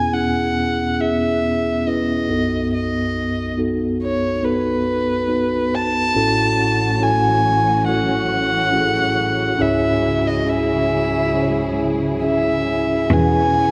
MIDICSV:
0, 0, Header, 1, 5, 480
1, 0, Start_track
1, 0, Key_signature, 4, "major"
1, 0, Tempo, 862069
1, 1511, Time_signature, 4, 2, 24, 8
1, 5347, Tempo, 875912
1, 7598, End_track
2, 0, Start_track
2, 0, Title_t, "Violin"
2, 0, Program_c, 0, 40
2, 0, Note_on_c, 0, 80, 72
2, 74, Note_on_c, 0, 78, 65
2, 82, Note_off_c, 0, 80, 0
2, 521, Note_off_c, 0, 78, 0
2, 521, Note_on_c, 0, 78, 43
2, 560, Note_on_c, 0, 76, 61
2, 569, Note_off_c, 0, 78, 0
2, 1044, Note_on_c, 0, 75, 61
2, 1052, Note_off_c, 0, 76, 0
2, 1517, Note_off_c, 0, 75, 0
2, 1525, Note_on_c, 0, 75, 56
2, 1975, Note_off_c, 0, 75, 0
2, 2244, Note_on_c, 0, 73, 58
2, 2477, Note_on_c, 0, 71, 69
2, 2485, Note_off_c, 0, 73, 0
2, 3197, Note_on_c, 0, 81, 89
2, 3205, Note_off_c, 0, 71, 0
2, 3909, Note_on_c, 0, 80, 75
2, 3918, Note_off_c, 0, 81, 0
2, 4388, Note_off_c, 0, 80, 0
2, 4391, Note_on_c, 0, 78, 77
2, 5353, Note_on_c, 0, 76, 70
2, 5361, Note_off_c, 0, 78, 0
2, 5714, Note_on_c, 0, 75, 60
2, 5722, Note_off_c, 0, 76, 0
2, 5831, Note_on_c, 0, 76, 62
2, 5839, Note_off_c, 0, 75, 0
2, 6548, Note_off_c, 0, 76, 0
2, 6798, Note_on_c, 0, 76, 60
2, 7282, Note_on_c, 0, 80, 76
2, 7291, Note_off_c, 0, 76, 0
2, 7598, Note_off_c, 0, 80, 0
2, 7598, End_track
3, 0, Start_track
3, 0, Title_t, "Tine electric piano"
3, 0, Program_c, 1, 4
3, 0, Control_c, 1, 64, 127
3, 0, Note_on_c, 1, 40, 44
3, 0, Note_on_c, 1, 47, 43
3, 0, Note_on_c, 1, 59, 61
3, 0, Note_on_c, 1, 61, 58
3, 0, Note_on_c, 1, 64, 59
3, 0, Note_on_c, 1, 68, 67
3, 65, Note_off_c, 1, 59, 0
3, 65, Note_on_c, 1, 59, 48
3, 72, Note_off_c, 1, 61, 0
3, 72, Note_on_c, 1, 61, 45
3, 74, Note_off_c, 1, 64, 0
3, 74, Note_on_c, 1, 64, 42
3, 77, Note_off_c, 1, 68, 0
3, 77, Note_on_c, 1, 68, 53
3, 527, Note_off_c, 1, 59, 0
3, 530, Note_off_c, 1, 61, 0
3, 531, Note_off_c, 1, 64, 0
3, 533, Note_off_c, 1, 68, 0
3, 550, Note_on_c, 1, 59, 49
3, 555, Note_on_c, 1, 61, 46
3, 557, Note_on_c, 1, 64, 42
3, 564, Note_on_c, 1, 68, 55
3, 1007, Note_off_c, 1, 59, 0
3, 1010, Note_off_c, 1, 61, 0
3, 1011, Note_off_c, 1, 64, 0
3, 1014, Note_off_c, 1, 68, 0
3, 1033, Note_on_c, 1, 59, 46
3, 1037, Note_on_c, 1, 61, 47
3, 1038, Note_on_c, 1, 64, 46
3, 1046, Note_on_c, 1, 71, 51
3, 1251, Note_off_c, 1, 47, 0
3, 1252, Note_off_c, 1, 40, 0
3, 1264, Note_off_c, 1, 59, 0
3, 1271, Note_on_c, 1, 59, 54
3, 1272, Note_on_c, 1, 42, 42
3, 1272, Note_on_c, 1, 63, 47
3, 1274, Note_off_c, 1, 61, 0
3, 1275, Note_off_c, 1, 64, 0
3, 1275, Note_on_c, 1, 35, 44
3, 1277, Note_on_c, 1, 66, 45
3, 1278, Note_off_c, 1, 71, 0
3, 1278, Control_c, 1, 64, 0
3, 1280, Note_on_c, 1, 69, 59
3, 1375, Control_c, 1, 64, 127
3, 1953, Note_off_c, 1, 59, 0
3, 1954, Note_off_c, 1, 63, 0
3, 1956, Note_off_c, 1, 66, 0
3, 1958, Note_off_c, 1, 69, 0
3, 1991, Note_on_c, 1, 59, 52
3, 1994, Note_on_c, 1, 63, 47
3, 1996, Note_on_c, 1, 66, 48
3, 2000, Note_on_c, 1, 69, 54
3, 2444, Note_off_c, 1, 59, 0
3, 2446, Note_off_c, 1, 63, 0
3, 2446, Note_off_c, 1, 66, 0
3, 2449, Note_off_c, 1, 69, 0
3, 2467, Note_on_c, 1, 59, 52
3, 2467, Note_on_c, 1, 63, 45
3, 2471, Note_on_c, 1, 66, 46
3, 2474, Note_on_c, 1, 69, 57
3, 2920, Note_off_c, 1, 59, 0
3, 2921, Note_off_c, 1, 63, 0
3, 2923, Note_off_c, 1, 66, 0
3, 2924, Note_off_c, 1, 69, 0
3, 2940, Note_on_c, 1, 59, 50
3, 2944, Note_on_c, 1, 63, 49
3, 2947, Note_on_c, 1, 66, 47
3, 2950, Note_on_c, 1, 71, 57
3, 3162, Note_off_c, 1, 42, 0
3, 3163, Note_off_c, 1, 35, 0
3, 3397, Note_off_c, 1, 59, 0
3, 3400, Note_off_c, 1, 63, 0
3, 3401, Note_off_c, 1, 66, 0
3, 3403, Note_off_c, 1, 71, 0
3, 3424, Note_on_c, 1, 61, 69
3, 3429, Note_on_c, 1, 33, 47
3, 3429, Note_on_c, 1, 64, 64
3, 3430, Control_c, 1, 64, 0
3, 3431, Note_on_c, 1, 45, 46
3, 3432, Note_on_c, 1, 66, 65
3, 3434, Note_on_c, 1, 69, 78
3, 3540, Control_c, 1, 64, 127
3, 3881, Note_off_c, 1, 61, 0
3, 3883, Note_off_c, 1, 64, 0
3, 3885, Note_off_c, 1, 66, 0
3, 3886, Note_off_c, 1, 69, 0
3, 3897, Note_on_c, 1, 61, 53
3, 3899, Note_on_c, 1, 64, 49
3, 3906, Note_on_c, 1, 66, 49
3, 3908, Note_on_c, 1, 69, 60
3, 4358, Note_off_c, 1, 61, 0
3, 4359, Note_off_c, 1, 64, 0
3, 4362, Note_off_c, 1, 66, 0
3, 4363, Note_off_c, 1, 69, 0
3, 4380, Note_on_c, 1, 61, 49
3, 4385, Note_on_c, 1, 64, 47
3, 4387, Note_on_c, 1, 66, 46
3, 4389, Note_on_c, 1, 69, 57
3, 4840, Note_off_c, 1, 61, 0
3, 4842, Note_off_c, 1, 64, 0
3, 4843, Note_off_c, 1, 66, 0
3, 4845, Note_off_c, 1, 69, 0
3, 4855, Note_on_c, 1, 61, 50
3, 4861, Note_on_c, 1, 64, 45
3, 4866, Note_on_c, 1, 66, 45
3, 4868, Note_on_c, 1, 68, 46
3, 4903, Note_on_c, 1, 69, 56
3, 4904, Note_off_c, 1, 68, 0
3, 5319, Note_off_c, 1, 61, 0
3, 5322, Note_off_c, 1, 64, 0
3, 5324, Note_off_c, 1, 66, 0
3, 5329, Note_off_c, 1, 33, 0
3, 5330, Note_off_c, 1, 45, 0
3, 5336, Note_on_c, 1, 61, 69
3, 5341, Note_on_c, 1, 64, 65
3, 5343, Note_off_c, 1, 69, 0
3, 5344, Note_on_c, 1, 37, 47
3, 5345, Note_on_c, 1, 44, 46
3, 5345, Note_on_c, 1, 68, 63
3, 5348, Note_on_c, 1, 73, 75
3, 5357, Control_c, 1, 64, 0
3, 5440, Control_c, 1, 64, 127
3, 5795, Note_off_c, 1, 61, 0
3, 5798, Note_off_c, 1, 64, 0
3, 5800, Note_off_c, 1, 68, 0
3, 5801, Note_off_c, 1, 73, 0
3, 5811, Note_on_c, 1, 61, 50
3, 5816, Note_on_c, 1, 64, 47
3, 5819, Note_on_c, 1, 68, 47
3, 5824, Note_on_c, 1, 76, 53
3, 6274, Note_off_c, 1, 61, 0
3, 6276, Note_off_c, 1, 64, 0
3, 6277, Note_off_c, 1, 68, 0
3, 6280, Note_off_c, 1, 76, 0
3, 6301, Note_on_c, 1, 61, 52
3, 6301, Note_on_c, 1, 64, 44
3, 6308, Note_on_c, 1, 68, 47
3, 6310, Note_on_c, 1, 72, 46
3, 6343, Note_off_c, 1, 72, 0
3, 6345, Note_on_c, 1, 73, 55
3, 6762, Note_off_c, 1, 61, 0
3, 6762, Note_off_c, 1, 64, 0
3, 6765, Note_off_c, 1, 68, 0
3, 6783, Note_on_c, 1, 61, 57
3, 6784, Note_off_c, 1, 73, 0
3, 6787, Note_on_c, 1, 64, 52
3, 6791, Note_on_c, 1, 68, 54
3, 6793, Note_on_c, 1, 76, 69
3, 7244, Note_off_c, 1, 61, 0
3, 7246, Note_off_c, 1, 37, 0
3, 7246, Note_off_c, 1, 44, 0
3, 7246, Note_off_c, 1, 64, 0
3, 7248, Note_off_c, 1, 68, 0
3, 7249, Note_off_c, 1, 76, 0
3, 7267, Note_on_c, 1, 61, 71
3, 7271, Note_on_c, 1, 64, 72
3, 7273, Note_on_c, 1, 47, 51
3, 7274, Note_on_c, 1, 68, 65
3, 7277, Control_c, 1, 64, 0
3, 7278, Note_on_c, 1, 71, 81
3, 7383, Control_c, 1, 64, 127
3, 7598, Note_off_c, 1, 47, 0
3, 7598, Note_off_c, 1, 61, 0
3, 7598, Note_off_c, 1, 64, 0
3, 7598, Note_off_c, 1, 68, 0
3, 7598, Note_off_c, 1, 71, 0
3, 7598, End_track
4, 0, Start_track
4, 0, Title_t, "String section"
4, 0, Program_c, 2, 48
4, 3423, Note_on_c, 2, 61, 51
4, 3424, Note_on_c, 2, 66, 60
4, 3425, Note_on_c, 2, 45, 53
4, 3426, Note_on_c, 2, 52, 50
4, 3426, Note_on_c, 2, 54, 52
4, 5329, Note_off_c, 2, 61, 0
4, 5330, Note_off_c, 2, 45, 0
4, 5330, Note_off_c, 2, 66, 0
4, 5331, Note_off_c, 2, 52, 0
4, 5351, Note_on_c, 2, 64, 49
4, 5352, Note_on_c, 2, 37, 53
4, 5352, Note_on_c, 2, 49, 49
4, 5352, Note_on_c, 2, 68, 58
4, 7249, Note_off_c, 2, 54, 0
4, 7252, Note_off_c, 2, 64, 0
4, 7252, Note_off_c, 2, 68, 0
4, 7253, Note_off_c, 2, 37, 0
4, 7253, Note_off_c, 2, 49, 0
4, 7263, Note_on_c, 2, 52, 60
4, 7264, Note_on_c, 2, 59, 53
4, 7265, Note_on_c, 2, 61, 54
4, 7265, Note_on_c, 2, 66, 51
4, 7265, Note_on_c, 2, 68, 67
4, 7598, Note_off_c, 2, 52, 0
4, 7598, Note_off_c, 2, 59, 0
4, 7598, Note_off_c, 2, 61, 0
4, 7598, Note_off_c, 2, 66, 0
4, 7598, Note_off_c, 2, 68, 0
4, 7598, End_track
5, 0, Start_track
5, 0, Title_t, "Cello"
5, 0, Program_c, 3, 42
5, 7264, Note_on_c, 3, 40, 72
5, 7598, Note_off_c, 3, 40, 0
5, 7598, End_track
0, 0, End_of_file